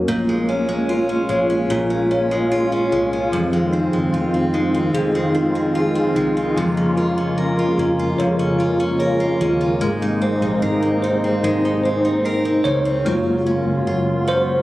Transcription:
Already playing: A#3 C#4 F#4 A#4
0.08 A#1 A#2 G#3 A#3 F4
0.29 G#3
0.49 C#4 C#5
0.69 G#3
0.89 F4
1.09 C#4
1.29 A#1 G#3 C#5
1.50 C#4
1.70 A#1 A#2 F4
1.90 G#3
2.11 C#4 C#5
2.31 G#3
2.52 F4
2.72 C#4
2.92 C2 G#3 C#5
3.13 C#4
3.32 F1 F2 D#3 F3 C4
3.53 G#3
3.73 C4 D#4
3.93 F#1 G#3
4.12 F1 C4 F4
4.34 C4
4.54 G#3 D#4
4.74 C4
4.93 F1 F2 G#4
5.15 G#3
5.35 C4 D#4
5.55 G#3
5.75 F4 G#4
5.95 C4
6.15 C2 G#3 D#4
6.37 C4
6.56 F1 F2 C#3 F3 A#3
6.77 C#4
6.97 F4
7.18 C#4
7.38 C#4 A#4
7.59 F4
7.78 F1 C#4 F4
7.99 F4
8.18 F1 F2 C#5
8.39 C#4
8.59 F4
8.80 C#4
8.99 A#4 C#5
9.20 F4
9.40 D#2 C#4 F4
9.61 F4
9.81 G#1 C3 G#3 D#4
10.02 D#4
10.22 C4 C5
10.41 A#1 D#4
10.62 G#1 D#4 A#4
10.82 C4
11.03 D#4 C5
11.24 C4
11.43 G#1 G#3 D#4
11.65 D#4
11.84 C4 C5
12.05 D#4
12.25 D#4 A#4
12.45 C4
12.64 C#2 D#4 C5 C#5
12.85 C4
13.05 F#1 C#3 F#3 G#3 A#3 F4
13.47 C#4
13.65 F#1
13.85 F#1 F4
14.28 C#4 C5

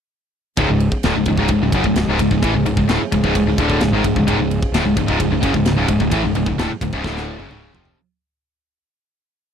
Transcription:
0.57 C#1 C#2 G#2 F3 G#3 C#4 G#4, kick, ride
0.69 C#1 C#2 G#2
0.80 ride
0.92 kick
1.03 D1 D2 A2, snare, ride
1.15 C#1 C#2 G#2
1.25 C#1 C#2 G#2, kick, ride
1.37 C#1 C#2 G#2, kick
1.48 C#1 C#2 G#2, kick, ride
1.61 C#1 C#2 G#2
1.72 F#1 F#2 C#3, kick, ride
1.84 C#1 C#2 G#2, kick
1.96 C#1 C#2 G#2, snare, ride
2.07 C#1 C#2 G#2
2.19 C#1 C#2 G#2, kick, ride
2.31 C#1 C#2 G#2, kick
2.42 A1 A2 E3, kick, ride
2.53 C#1 C#2 G#2
2.65 C#1 C#2 G#2, ride
2.77 C#1 C#2 G#2, kick
2.87 D1 D2 A2, snare, ride
3.00 muted picked electric bass stroke, muted distorted electric guitar stroke, muted overdriven electric guitar stroke
3.12 C#1 C#2 G#2, kick, ride
3.23 C#1 C#2 G#2, kick
3.35 C#1 C#2 G#2, kick, ride
3.45 C#1 C#2 G#2
3.58 D1 D2 A2 D3, kick, ride
3.70 kick
3.81 C#1 C#2 G#2, snare, ride
3.92 G#1 G#2 D#3
4.04 C#1 C#2 G#2, kick, ride
4.15 C#1 C#2 G#2, kick
4.27 C#1 C#2 G#2, kick, ride
4.37 C#1 C#2 G#2
4.51 ride
4.63 kick
4.72 D1 D2 A2, snare, ride
4.84 C#1 C#2 G#2
4.96 C#1 C#2 G#2, kick, ride
5.08 C#1 C#2 G#2, kick
5.20 C#1 C#2 G#2, kick, ride
5.30 C#1 C#2 G#2
5.43 F#1 F#2 C#3, kick, ride
5.54 C#1 C#2 G#2, kick
5.65 C#1 C#2 G#2, snare, ride
5.76 C#1 C#2 G#2
5.88 C#1 C#2 G#2, kick, ride
6.00 C#1 C#2 G#2, kick
6.11 A1 A2 E3, kick, ride
6.25 C#1 C#2 G#2
6.35 C#1 C#2 G#2, ride
6.46 C#1 C#2 G#2, kick
6.58 D1 D2 A2, snare, ride
6.70 muted picked electric bass stroke, muted distorted electric guitar stroke, muted overdriven electric guitar stroke
6.81 C#1 C#2 G#2, kick, ride
6.93 C#1 C#2 G#2, kick
7.04 D1 D2 A2 D3, kick, snare
7.17 snare
7.39 F#1 F#2 C#3, high tom
7.50 C#1 C#2 G#2 C#3, mid tom
7.72 F1 F2 C3 F3, floor tom
7.85 floor tom

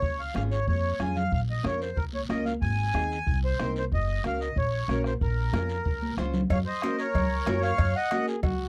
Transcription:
Already playing: C#5
0.02 C#2, bombo low, long guiro
0.20 F5, high conga
0.34 G#1 C#4 F4 G#4 F5, bombo rim, high conga, short guiro
0.51 C#5, short guiro
0.67 F2 C#5, bombo low, high conga, long guiro
0.99 F2 C#4 F4 G#4 G#5, bombo rim, low conga, short guiro
1.16 F5, low conga, short guiro
1.32 A#1 F5, bombo low, long guiro
1.49 D#5, high conga
1.63 F2 C#4 F4 A#4 C#5, bombo rim, high conga, short guiro
1.81 C5, short guiro
1.97 C#2 A#4, bombo low, high conga, long guiro
2.13 C#5, high conga
2.29 C#2 C#4 F4 A#4 D#5, bombo rim, high conga, short guiro
2.45 F5, high conga, short guiro
2.62 G#1 G#5, bombo low, long guiro
2.78 high conga
2.94 D#2 C4 D#4 G#4, bombo rim, high conga, short guiro
3.12 short guiro
3.27 C2, bombo low, high conga, long guiro
3.45 C5
3.59 C2 C4 D#4 A#4, bombo rim, high conga, short guiro
3.76 C5, short guiro
3.92 F#1 D#5, bombo low, long guiro
4.08 high conga
4.24 C#2 C#4 F#4 A#4 F5, bombo rim, high conga, short guiro
4.41 D#5, short guiro
4.56 A#1 C#5, bombo low, high conga, long guiro
4.88 A#1 C#4 F#4 A#4, bombo rim, high conga, short guiro
5.04 C5, bombo rim, short guiro
5.21 A#1 A#4, bombo low, long guiro
5.37 high conga
5.53 F2 C#4 F4 A#4, bombo rim, high conga, short guiro
5.69 short guiro
5.85 C#2, bombo low, high conga, long guiro
6.02 high conga
6.17 C#2 C#4 F4 C5, bombo rim, low conga, short guiro
6.34 low conga, short guiro
6.50 F#2 C#5 F5, bombo low, cowbell, high conga, low conga, long guiro
6.66 C5 D#5
6.82 C#4 F#4 A#4, bombo rim, cowbell, high conga, short guiro
6.99 A#4 C#5, short guiro
7.14 C#2, bombo low, cowbell, high conga, low conga, long guiro
7.46 F#2 C#4 F#4 A#4, bombo rim, cowbell, high conga, low timbale, short guiro
7.63 C#5 F5, short guiro
7.78 F#2, bombo low, cowbell, long guiro
7.96 D#5 F#5
8.11 C#4 F#4 A#4, bombo rim, cowbell, high conga, short guiro
8.27 G#4, short guiro
8.43 C#2 F#4, bombo low, cowbell, high conga, low conga, long guiro

